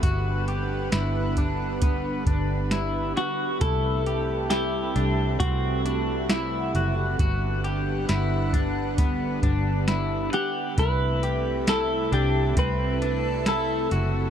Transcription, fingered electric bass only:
\new Staff \with { instrumentName = "Fingered electric bass" } { \clef bass \time 4/4 \key c \lydian \tempo 4 = 67 g,,4 g,,4. g,,4 r8 | c,4. c,8 c,4. fis,,8 | g,,4 g,,4. g,,4 r8 | c,4. c,8 c,4. fis,,8 | }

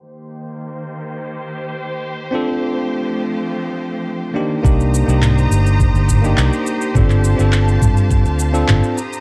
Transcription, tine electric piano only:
\new Staff \with { instrumentName = "Tine electric piano" } { \time 4/4 \key c \dorian \tempo 4 = 104 r1 | <c' d' f' a'>2.~ <c' d' f' a'>8 <bes d' ees' g'>8 | <bes d' ees' g'>8. <bes d' ees' g'>2 <bes d' ees' g'>4~ <bes d' ees' g'>16 | <c' d' f' a'>8. <c' d' f' a'>2 <c' d' f' a'>8. r8 | }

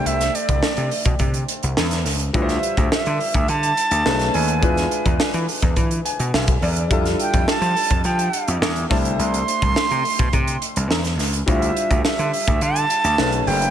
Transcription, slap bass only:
\new Staff \with { instrumentName = "Slap bass" } { \clef bass \time 4/4 \key c \major \tempo 4 = 105 c,8 r16 c,16 r16 c16 r16 b,16 c8 r16 c,16 e,8 des,8 | d,8 r16 d,16 r16 d16 r16 d,16 d8 r16 d,16 b,,8 dis,8 | e,8 r16 e,16 r16 e16 r16 e,16 e8 r16 b,16 b,,8 e,8 | f,8 r16 f,16 r16 f16 r16 f,16 f8 r16 f,16 e,8 c,8 |
c,8 r16 c,16 r16 c16 r16 b,16 c8 r16 c,16 e,8 des,8 | d,8 r16 d,16 r16 d16 r16 d,16 d8 r16 d,16 b,,8 fis,,8 | }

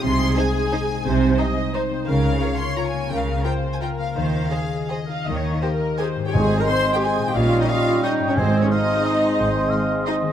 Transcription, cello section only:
\new Staff \with { instrumentName = "Cello section" } { \clef bass \time 3/4 \key aes \major \tempo 4 = 173 c4 r2 | c4 r2 | des4 r2 | des4 r2 |
ees4 r2 | ees4 r2 | aes,4 r2 | bes,4 r2 |
aes,4 r2 | aes,4 r2 | }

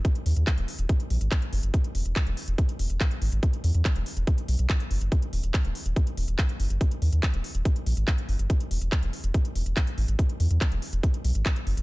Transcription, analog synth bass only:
\new Staff \with { instrumentName = "Analog synth bass" } { \clef bass \time 4/4 \key fes \lydian \tempo 4 = 142 r8 ees,16 ees,16 r16 ees,,16 r16 ees,,16 r8 bes,,16 aes,,16 r8 ges,,16 ges,,16 | r8 e,,16 e,,16 r16 e,,16 r16 e,,16 r8 e,,16 e,,16 r8 aes,,16 aes,,16 | r8 e,16 e,16 r16 e,,16 r16 e,,16 r8 b,,16 b,,16 r8 ges,,16 ges,,16 | r8 ees,,16 ees,,16 r16 ees,,16 r16 ees,,16 r8 ees,,16 ees,,16 r8 ges,,16 ges,,16 |
r8 ees,16 ees,16 r16 ees,,16 r16 ees,,16 r8 bes,,16 aes,,16 r8 ges,,16 ges,,16 | r8 e,,16 e,,16 r16 e,,16 r16 e,,16 r8 e,,16 e,,16 r8 aes,,16 aes,,16 | r8 e,16 e,16 r16 e,,16 r16 e,,16 r8 b,,16 aes,,16 r8 ges,,16 ges,,16 | }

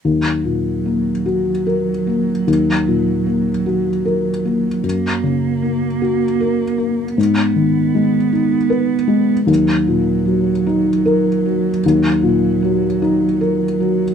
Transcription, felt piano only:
\new Staff \with { instrumentName = "Felt piano" } { \time 6/8 \key ees \minor \tempo 4. = 51 ees,8 bes,8 bes8 ges'8 bes'8 bes8 | ees,8 bes,8 bes8 ges'8 bes'8 bes8 | ges,8 des8 bes8 ges'8 bes'8 bes8 | aes,8 ees8 aes8 ees'8 ces''8 aes8 |
ees,8 bes,8 ges8 ees'8 bes'8 ges8 | ees,8 bes,8 ges8 ees'8 bes'8 ges8 | }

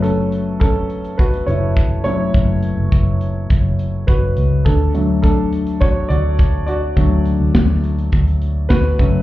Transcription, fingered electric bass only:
\new Staff \with { instrumentName = "Fingered electric bass" } { \clef bass \time 4/4 \key d \major \tempo 4 = 104 fis,,2~ fis,,8 fis,,4. | fis,,8. fis,,16 fis,,4 fis,,4 fis,,8 cis,8 | d,2~ d,8 d,4. | d,8. d,16 d,4 d,4 d,8 fis,,8 | }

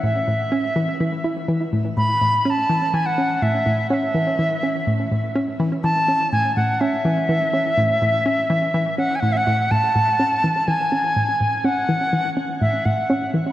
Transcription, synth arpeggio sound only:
\new Staff \with { instrumentName = "Synth arpeggio sound" } { \clef bass \time 4/4 \key a \major \tempo 4 = 124 a,8 a,8 cis'8 e8 e8 e'8 e8 a,8 | a,8 a,8 cis'8 e8 e8 cis'8 a,8 a,8 | cis'8 e8 e8 cis'8 a,8 a,8 cis'8 e8 | e8 cis'8 a,8 a,8 cis'8 e8 e8 cis'8 |
a,8 a,8 cis'8 e8 e8 cis'8 a,8 a,8 | a,8 a,8 cis'8 e8 e8 cis'8 a,8 a,8 | cis'8 e8 e8 cis'8 a,8 a,8 cis'8 e8 | }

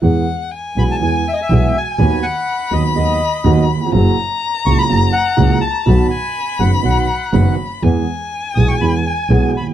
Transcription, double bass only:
\new Staff \with { instrumentName = "Double bass" } { \clef bass \time 4/4 \key e \major \tempo 4 = 123 e,8 r4 b,,8 e,8 r8 b,,8 r8 | dis,8 r4 dis,8 dis,8 r8 dis,8 r8 | fis,,8 r4 cis,8 fis,,8 r8 cis,8 r8 | b,,8 r4 fis,,8 b,,8 r8 fis,,8 r8 |
e,8 r4 b,,8 e,8 r8 b,,8 r8 | }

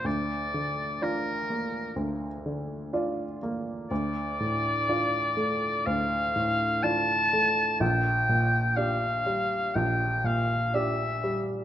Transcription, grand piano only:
\new Staff \with { instrumentName = "Grand piano" } { \time 4/4 \key c \dorian \tempo 4 = 62 d,8 d8 <d' f'>8 bes8 d,8 d8 <d' f'>8 bes8 | \key d \minor d,8 a,8 <d' f'>8 a8 d,8 a,8 <d' f'>8 a8 | bes,,8 bes,8 <d' g'>8 g8 bes,,8 bes,8 <d' g'>8 g8 | }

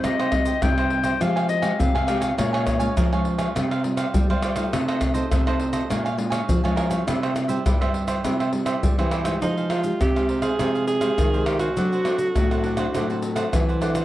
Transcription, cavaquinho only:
\new Staff \with { instrumentName = "Cavaquinho" } { \time 4/4 \key f \minor \tempo 4 = 102 <ees' g' c'' ees''>16 <g' c'' ees''>16 r16 <g' c'' ees''>16 <ees' g' c'' ees''>16 <g' c'' ees''>8 <g' c'' ees''>16 <g' aes' f'' aes''>16 <g' f'' aes''>16 r16 <g' f'' aes''>8 <g' f'' aes''>16 <g' aes' f'' aes''>16 <g' f'' aes''>16 | <bes' des'' f'' aes''>16 <des'' f'' aes''>16 r16 <des'' f'' aes''>16 <bes' des'' f'' aes''>16 <des'' f'' aes''>8 <des'' f'' aes''>16 <f' g' c'' f''>16 <g' c'' f''>16 r16 <g' c'' f''>8 <g' c'' f''>16 <f' g' c'' f''>16 <g' c'' f''>16 | <f' a' c'' ees''>16 <a' c'' ees''>16 r16 <a' c'' ees''>16 <f' a' c'' ees''>16 <a' c'' ees''>8 <a' c'' ees''>16 <bes' des'' f'' aes''>16 <des'' f'' aes''>16 r16 <des'' f'' aes''>8 <des'' f'' aes''>16 <bes' des'' f'' aes''>16 <des'' f'' aes''>16 | <e' g' c'' e''>16 <g' c'' e''>16 r16 <g' c'' e''>16 <e' g' c'' e''>16 <g' c'' e''>8 <g' c'' e''>16 <e' g' c'' e''>16 <g' c'' e''>16 r16 <g' c'' e''>8 <g' c'' e''>16 <e' g' c'' e''>16 <g' c'' e''>16 |
<ees' aes' c'' f''>16 <aes' c'' f''>16 <ees' aes' c'' f''>16 r8 <aes' c'' f''>16 <ees' aes' c'' f''>16 <aes' c'' f''>16 <ees' aes' c'' f''>16 <aes' c'' f''>16 r16 <aes' c'' f''>8 <aes' c'' f''>16 <ees' aes' c'' f''>16 <aes' c'' f''>16 | <d' c'' d'' fis''>16 <c'' d'' fis''>16 <d' c'' d'' fis''>16 r8 <c'' d'' fis''>16 <d' c'' d'' fis''>16 <c'' d'' fis''>16 <d' c'' d'' fis''>16 <c'' d'' fis''>16 r16 <c'' d'' fis''>8 <c'' d'' fis''>16 <d' c'' d'' fis''>16 <c'' d'' fis''>16 | }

